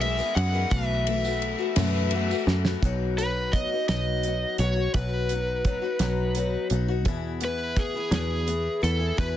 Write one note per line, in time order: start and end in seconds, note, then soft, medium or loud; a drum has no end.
0.00 0.21 B1 medium
0.00 0.69 D#3 medium
0.00 0.18 D#3 medium
0.00 0.19 G#3 medium
0.00 0.18 B3 medium
0.00 0.69 G#4 medium
0.00 2.79 E5 loud
0.00 0.37 E5 medium
0.00 ride medium
0.00 tambourine soft
0.05 0.17 G#4 medium
0.18 0.55 D#3 soft
0.18 0.54 G#3 soft
0.18 0.54 B3 soft
0.18 0.52 G#4 medium
0.18 tambourine medium
0.35 0.64 F#2 medium
0.35 0.72 F#5 loud
0.35 ride medium
0.53 0.72 D#3 medium
0.53 0.72 G#3 medium
0.53 0.72 B3 medium
0.53 0.71 G#4 medium
0.71 1.54 B1 loud
0.71 1.07 B2 medium
0.71 1.05 E3 medium
0.71 1.06 A3 medium
0.71 2.81 B3 medium
0.71 1.07 B3 medium
0.71 1.08 F#4 medium
0.71 2.82 A4 medium
0.71 2.43 E5 medium
0.71 kick loud
0.71 ride medium
0.71 tambourine medium
1.07 1.24 E3 medium
1.07 1.25 A3 medium
1.07 1.25 B3 medium
1.07 1.23 F#4 medium
1.07 ride medium
1.25 1.61 A3 soft
1.25 1.59 B3 soft
1.25 1.57 F#4 medium
1.25 tambourine medium
1.42 ride medium
1.59 1.77 A3 soft
1.59 1.77 B3 medium
1.59 1.77 F#4 medium
1.76 2.33 F#2 loud
1.76 2.12 B2 medium
1.76 2.11 E3 medium
1.76 2.13 A3 loud
1.76 2.13 B3 medium
1.76 2.13 F#4 medium
1.76 snare loud
1.76 ride loud
1.76 tambourine loud
1.96 tambourine soft
2.11 2.30 E3 medium
2.11 2.31 A3 medium
2.11 ride medium
2.15 2.31 B3 medium
2.15 2.29 F#4 medium
2.30 2.67 A3 medium
2.30 2.65 B3 medium
2.30 2.63 F#4 medium
2.30 tambourine medium
2.47 2.75 F#2 medium
2.47 snare medium
2.65 2.84 A3 medium
2.65 2.83 B3 medium
2.65 2.82 F#4 medium
2.65 snare loud
2.82 3.66 B1 loud
2.82 3.18 B2 medium
2.82 3.17 F#3 medium
2.82 3.19 B3 medium
2.82 3.19 D#4 medium
2.82 3.19 F#4 medium
2.82 kick medium
2.82 closed hi-hat medium
3.18 3.52 F#3 medium
3.18 3.53 B3 medium
3.18 3.54 D#4 medium
3.18 3.55 F#4 medium
3.18 3.54 B4 medium
3.18 closed hi-hat medium
3.53 3.71 F#3 medium
3.53 3.72 B3 medium
3.53 3.72 D#4 medium
3.53 3.71 F#4 medium
3.53 3.87 D#5 medium
3.53 kick medium
3.53 closed hi-hat medium
3.72 3.90 B3 soft
3.72 3.90 D#4 soft
3.72 3.89 F#4 soft
3.88 4.44 B1 loud
3.88 4.24 B2 medium
3.88 4.23 F#3 medium
3.88 4.24 B3 medium
3.88 4.25 D#4 medium
3.88 4.25 F#4 medium
3.88 4.59 D#5 medium
3.88 snare loud
3.88 closed hi-hat medium
4.23 4.58 F#3 medium
4.23 4.59 B3 medium
4.23 4.61 D#4 medium
4.23 closed hi-hat medium
4.28 4.61 F#4 medium
4.58 4.87 B1 medium
4.58 4.77 F#3 medium
4.58 4.77 B3 medium
4.58 4.76 D#4 medium
4.58 4.94 C#5 medium
4.58 closed hi-hat medium
4.63 4.75 F#4 medium
4.76 4.95 B3 soft
4.76 4.95 D#4 soft
4.76 4.94 F#4 soft
4.94 5.78 B1 loud
4.94 5.30 B2 medium
4.94 5.29 F#3 medium
4.94 5.30 B3 medium
4.94 5.31 D#4 medium
4.94 5.31 F#4 medium
4.94 6.67 B4 medium
4.94 kick medium
4.94 closed hi-hat medium
5.29 5.64 F#3 medium
5.29 5.65 B3 medium
5.29 5.66 D#4 medium
5.29 closed hi-hat medium
5.34 5.67 F#4 medium
5.65 5.83 F#3 medium
5.65 5.83 B3 medium
5.65 5.83 D#4 medium
5.65 kick medium
5.65 closed hi-hat medium
5.69 5.81 F#4 medium
5.82 6.00 B3 soft
5.82 6.01 D#4 medium
5.82 6.00 F#4 medium
5.99 6.56 B1 loud
5.99 6.35 B2 medium
5.99 6.34 F#3 medium
5.99 6.35 B3 medium
5.99 6.37 D#4 loud
5.99 6.37 F#4 loud
5.99 snare loud
5.99 closed hi-hat medium
6.35 6.69 F#3 medium
6.35 6.70 B3 medium
6.35 6.71 D#4 medium
6.35 6.72 F#4 medium
6.35 closed hi-hat medium
6.70 7.06 B1 medium
6.70 6.88 F#3 medium
6.70 6.89 B3 medium
6.70 6.89 D#4 medium
6.70 closed hi-hat medium
6.74 6.87 F#4 medium
6.88 7.06 B3 soft
6.88 7.07 D#4 medium
6.88 7.06 F#4 medium
7.05 7.89 E2 loud
7.05 7.41 E2 medium
7.05 7.42 B2 medium
7.05 7.39 E3 medium
7.05 7.40 B3 medium
7.05 7.42 E4 medium
7.05 7.42 G#4 medium
7.05 kick medium
7.05 closed hi-hat medium
7.40 7.74 E3 medium
7.40 7.76 B3 medium
7.40 7.77 E4 medium
7.40 7.78 G#4 medium
7.40 closed hi-hat medium
7.44 7.79 B4 loud
7.75 7.94 E3 medium
7.75 7.95 B3 medium
7.75 7.95 E4 medium
7.75 8.11 G#4 loud
7.75 7.93 G#4 medium
7.75 kick medium
7.75 closed hi-hat medium
7.94 8.11 E3 soft
7.94 8.12 B3 medium
7.94 8.12 E4 medium
7.94 8.12 G#4 medium
8.11 8.67 E2 loud
8.11 8.47 E2 medium
8.11 8.47 B2 medium
8.11 8.45 E3 medium
8.11 8.46 B3 medium
8.11 8.47 E4 medium
8.11 8.48 G#4 medium
8.11 8.83 G#4 medium
8.11 snare loud
8.11 closed hi-hat medium
8.47 8.80 E3 medium
8.47 8.82 B3 medium
8.47 8.83 E4 medium
8.47 8.84 G#4 medium
8.47 closed hi-hat medium
8.82 9.11 E2 medium
8.82 9.00 E3 medium
8.82 9.00 B3 medium
8.82 8.99 E4 medium
8.82 8.98 G#4 medium
8.82 9.19 A4 medium
8.82 closed hi-hat medium
8.99 9.17 E3 soft
8.99 9.17 B3 soft
8.99 9.18 E4 medium
8.99 9.17 G#4 medium
9.17 9.37 E2 medium
9.17 9.37 E2 loud
9.17 9.37 B2 medium
9.17 9.37 E3 medium
9.17 9.37 B3 medium
9.17 9.37 E4 medium
9.17 9.37 G#4 medium
9.17 9.37 B4 medium
9.17 kick loud
9.17 closed hi-hat medium